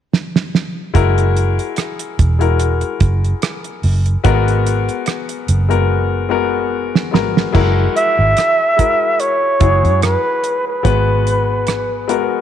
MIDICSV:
0, 0, Header, 1, 5, 480
1, 0, Start_track
1, 0, Tempo, 825309
1, 554, Time_signature, 4, 2, 24, 8
1, 7218, End_track
2, 0, Start_track
2, 0, Title_t, "Flugelhorn"
2, 0, Program_c, 0, 56
2, 4629, Note_on_c, 0, 76, 102
2, 5351, Note_on_c, 0, 73, 94
2, 5360, Note_off_c, 0, 76, 0
2, 5832, Note_off_c, 0, 73, 0
2, 5839, Note_on_c, 0, 71, 84
2, 6182, Note_off_c, 0, 71, 0
2, 6210, Note_on_c, 0, 71, 67
2, 7144, Note_off_c, 0, 71, 0
2, 7218, End_track
3, 0, Start_track
3, 0, Title_t, "Grand piano"
3, 0, Program_c, 1, 0
3, 544, Note_on_c, 1, 56, 88
3, 546, Note_on_c, 1, 64, 80
3, 551, Note_on_c, 1, 66, 80
3, 556, Note_on_c, 1, 70, 96
3, 645, Control_c, 1, 64, 127
3, 1149, Note_off_c, 1, 56, 0
3, 1150, Note_off_c, 1, 64, 0
3, 1152, Note_off_c, 1, 66, 0
3, 1154, Note_off_c, 1, 70, 0
3, 1389, Note_on_c, 1, 56, 71
3, 1395, Note_on_c, 1, 64, 63
3, 1398, Note_on_c, 1, 66, 63
3, 1404, Note_on_c, 1, 70, 82
3, 2067, Note_off_c, 1, 56, 0
3, 2071, Note_off_c, 1, 64, 0
3, 2072, Note_off_c, 1, 66, 0
3, 2075, Note_off_c, 1, 70, 0
3, 2463, Note_on_c, 1, 56, 91
3, 2465, Note_on_c, 1, 59, 90
3, 2467, Note_on_c, 1, 66, 86
3, 2475, Note_on_c, 1, 70, 96
3, 2480, Control_c, 1, 64, 0
3, 2574, Control_c, 1, 64, 127
3, 3068, Note_off_c, 1, 56, 0
3, 3069, Note_off_c, 1, 59, 0
3, 3070, Note_off_c, 1, 66, 0
3, 3073, Note_off_c, 1, 70, 0
3, 3307, Note_on_c, 1, 56, 71
3, 3312, Note_on_c, 1, 59, 65
3, 3315, Note_on_c, 1, 66, 67
3, 3317, Note_on_c, 1, 70, 86
3, 3566, Note_off_c, 1, 56, 0
3, 3569, Note_off_c, 1, 59, 0
3, 3570, Note_off_c, 1, 66, 0
3, 3571, Note_off_c, 1, 70, 0
3, 3658, Note_on_c, 1, 56, 74
3, 3662, Note_on_c, 1, 59, 72
3, 3667, Note_on_c, 1, 66, 72
3, 3671, Note_on_c, 1, 70, 89
3, 4010, Note_off_c, 1, 56, 0
3, 4012, Note_off_c, 1, 59, 0
3, 4015, Note_off_c, 1, 66, 0
3, 4017, Note_off_c, 1, 70, 0
3, 4136, Note_on_c, 1, 56, 64
3, 4141, Note_on_c, 1, 59, 59
3, 4145, Note_on_c, 1, 66, 57
3, 4150, Note_on_c, 1, 70, 77
3, 4318, Note_off_c, 1, 56, 0
3, 4321, Note_off_c, 1, 59, 0
3, 4323, Note_off_c, 1, 66, 0
3, 4325, Note_off_c, 1, 70, 0
3, 4377, Note_on_c, 1, 56, 88
3, 4382, Note_on_c, 1, 64, 85
3, 4387, Note_on_c, 1, 66, 88
3, 4389, Note_on_c, 1, 70, 92
3, 4400, Control_c, 1, 64, 0
3, 4500, Control_c, 1, 64, 127
3, 4894, Note_off_c, 1, 56, 0
3, 4896, Note_off_c, 1, 64, 0
3, 4899, Note_off_c, 1, 66, 0
3, 4900, Note_off_c, 1, 70, 0
3, 5096, Note_on_c, 1, 56, 57
3, 5102, Note_on_c, 1, 64, 58
3, 5107, Note_on_c, 1, 66, 52
3, 5111, Note_on_c, 1, 70, 69
3, 5450, Note_off_c, 1, 56, 0
3, 5453, Note_off_c, 1, 64, 0
3, 5456, Note_off_c, 1, 66, 0
3, 5457, Note_off_c, 1, 70, 0
3, 5582, Note_on_c, 1, 56, 68
3, 5584, Note_on_c, 1, 64, 66
3, 5590, Note_on_c, 1, 66, 59
3, 5592, Note_on_c, 1, 68, 75
3, 6097, Note_off_c, 1, 56, 0
3, 6098, Note_off_c, 1, 64, 0
3, 6101, Note_off_c, 1, 66, 0
3, 6102, Note_off_c, 1, 68, 0
3, 6299, Note_on_c, 1, 56, 82
3, 6303, Note_on_c, 1, 59, 77
3, 6307, Note_on_c, 1, 66, 67
3, 6309, Note_on_c, 1, 71, 89
3, 6319, Control_c, 1, 64, 0
3, 6417, Control_c, 1, 64, 127
3, 6816, Note_off_c, 1, 56, 0
3, 6818, Note_off_c, 1, 59, 0
3, 6820, Note_off_c, 1, 66, 0
3, 6821, Note_off_c, 1, 71, 0
3, 7023, Note_on_c, 1, 56, 76
3, 7028, Note_on_c, 1, 59, 67
3, 7032, Note_on_c, 1, 66, 70
3, 7035, Note_on_c, 1, 70, 83
3, 7218, Note_off_c, 1, 56, 0
3, 7218, Note_off_c, 1, 59, 0
3, 7218, Note_off_c, 1, 66, 0
3, 7218, Note_off_c, 1, 70, 0
3, 7218, End_track
4, 0, Start_track
4, 0, Title_t, "Fingered electric bass"
4, 0, Program_c, 2, 33
4, 553, Note_on_c, 2, 30, 99
4, 916, Note_off_c, 2, 30, 0
4, 1276, Note_on_c, 2, 28, 77
4, 1638, Note_off_c, 2, 28, 0
4, 1749, Note_on_c, 2, 30, 79
4, 1932, Note_off_c, 2, 30, 0
4, 2232, Note_on_c, 2, 30, 86
4, 2413, Note_off_c, 2, 30, 0
4, 2472, Note_on_c, 2, 32, 99
4, 2835, Note_off_c, 2, 32, 0
4, 3191, Note_on_c, 2, 30, 75
4, 4148, Note_off_c, 2, 30, 0
4, 4148, Note_on_c, 2, 32, 82
4, 4331, Note_off_c, 2, 32, 0
4, 4390, Note_on_c, 2, 30, 93
4, 4572, Note_off_c, 2, 30, 0
4, 4762, Note_on_c, 2, 32, 76
4, 4845, Note_off_c, 2, 32, 0
4, 5590, Note_on_c, 2, 30, 79
4, 5720, Note_on_c, 2, 42, 74
4, 5729, Note_off_c, 2, 30, 0
4, 5903, Note_off_c, 2, 42, 0
4, 6309, Note_on_c, 2, 32, 97
4, 7138, Note_off_c, 2, 32, 0
4, 7218, End_track
5, 0, Start_track
5, 0, Title_t, "Drums"
5, 78, Note_on_c, 9, 38, 64
5, 137, Note_off_c, 9, 38, 0
5, 208, Note_on_c, 9, 38, 73
5, 266, Note_off_c, 9, 38, 0
5, 319, Note_on_c, 9, 38, 70
5, 377, Note_off_c, 9, 38, 0
5, 552, Note_on_c, 9, 36, 92
5, 552, Note_on_c, 9, 42, 84
5, 610, Note_off_c, 9, 36, 0
5, 610, Note_off_c, 9, 42, 0
5, 685, Note_on_c, 9, 42, 44
5, 744, Note_off_c, 9, 42, 0
5, 794, Note_on_c, 9, 42, 61
5, 853, Note_off_c, 9, 42, 0
5, 925, Note_on_c, 9, 42, 48
5, 983, Note_off_c, 9, 42, 0
5, 1026, Note_on_c, 9, 42, 72
5, 1035, Note_on_c, 9, 37, 79
5, 1084, Note_off_c, 9, 42, 0
5, 1094, Note_off_c, 9, 37, 0
5, 1160, Note_on_c, 9, 42, 60
5, 1218, Note_off_c, 9, 42, 0
5, 1274, Note_on_c, 9, 42, 68
5, 1275, Note_on_c, 9, 36, 80
5, 1332, Note_off_c, 9, 42, 0
5, 1333, Note_off_c, 9, 36, 0
5, 1401, Note_on_c, 9, 42, 43
5, 1459, Note_off_c, 9, 42, 0
5, 1509, Note_on_c, 9, 42, 73
5, 1567, Note_off_c, 9, 42, 0
5, 1635, Note_on_c, 9, 42, 44
5, 1693, Note_off_c, 9, 42, 0
5, 1747, Note_on_c, 9, 42, 74
5, 1749, Note_on_c, 9, 36, 103
5, 1805, Note_off_c, 9, 42, 0
5, 1808, Note_off_c, 9, 36, 0
5, 1887, Note_on_c, 9, 42, 39
5, 1945, Note_off_c, 9, 42, 0
5, 1990, Note_on_c, 9, 42, 81
5, 1996, Note_on_c, 9, 37, 102
5, 2048, Note_off_c, 9, 42, 0
5, 2054, Note_off_c, 9, 37, 0
5, 2119, Note_on_c, 9, 42, 41
5, 2177, Note_off_c, 9, 42, 0
5, 2230, Note_on_c, 9, 46, 54
5, 2288, Note_off_c, 9, 46, 0
5, 2360, Note_on_c, 9, 42, 49
5, 2418, Note_off_c, 9, 42, 0
5, 2469, Note_on_c, 9, 42, 81
5, 2470, Note_on_c, 9, 36, 98
5, 2527, Note_off_c, 9, 42, 0
5, 2529, Note_off_c, 9, 36, 0
5, 2606, Note_on_c, 9, 42, 47
5, 2664, Note_off_c, 9, 42, 0
5, 2713, Note_on_c, 9, 42, 68
5, 2771, Note_off_c, 9, 42, 0
5, 2842, Note_on_c, 9, 42, 43
5, 2900, Note_off_c, 9, 42, 0
5, 2943, Note_on_c, 9, 42, 75
5, 2953, Note_on_c, 9, 37, 77
5, 3001, Note_off_c, 9, 42, 0
5, 3011, Note_off_c, 9, 37, 0
5, 3077, Note_on_c, 9, 42, 56
5, 3135, Note_off_c, 9, 42, 0
5, 3189, Note_on_c, 9, 42, 67
5, 3247, Note_off_c, 9, 42, 0
5, 3319, Note_on_c, 9, 42, 41
5, 3377, Note_off_c, 9, 42, 0
5, 4045, Note_on_c, 9, 38, 64
5, 4103, Note_off_c, 9, 38, 0
5, 4155, Note_on_c, 9, 38, 83
5, 4213, Note_off_c, 9, 38, 0
5, 4287, Note_on_c, 9, 38, 84
5, 4345, Note_off_c, 9, 38, 0
5, 4389, Note_on_c, 9, 36, 91
5, 4390, Note_on_c, 9, 49, 82
5, 4448, Note_off_c, 9, 36, 0
5, 4449, Note_off_c, 9, 49, 0
5, 4633, Note_on_c, 9, 42, 65
5, 4691, Note_off_c, 9, 42, 0
5, 4866, Note_on_c, 9, 42, 72
5, 4876, Note_on_c, 9, 37, 72
5, 4924, Note_off_c, 9, 42, 0
5, 4934, Note_off_c, 9, 37, 0
5, 5112, Note_on_c, 9, 42, 65
5, 5113, Note_on_c, 9, 36, 72
5, 5170, Note_off_c, 9, 42, 0
5, 5171, Note_off_c, 9, 36, 0
5, 5349, Note_on_c, 9, 42, 65
5, 5407, Note_off_c, 9, 42, 0
5, 5587, Note_on_c, 9, 42, 70
5, 5588, Note_on_c, 9, 36, 99
5, 5645, Note_off_c, 9, 42, 0
5, 5647, Note_off_c, 9, 36, 0
5, 5727, Note_on_c, 9, 42, 37
5, 5785, Note_off_c, 9, 42, 0
5, 5830, Note_on_c, 9, 42, 70
5, 5836, Note_on_c, 9, 37, 96
5, 5888, Note_off_c, 9, 42, 0
5, 5894, Note_off_c, 9, 37, 0
5, 6070, Note_on_c, 9, 42, 55
5, 6128, Note_off_c, 9, 42, 0
5, 6310, Note_on_c, 9, 36, 93
5, 6310, Note_on_c, 9, 42, 75
5, 6368, Note_off_c, 9, 36, 0
5, 6368, Note_off_c, 9, 42, 0
5, 6554, Note_on_c, 9, 42, 70
5, 6612, Note_off_c, 9, 42, 0
5, 6786, Note_on_c, 9, 42, 70
5, 6795, Note_on_c, 9, 37, 81
5, 6844, Note_off_c, 9, 42, 0
5, 6853, Note_off_c, 9, 37, 0
5, 7033, Note_on_c, 9, 42, 62
5, 7091, Note_off_c, 9, 42, 0
5, 7218, End_track
0, 0, End_of_file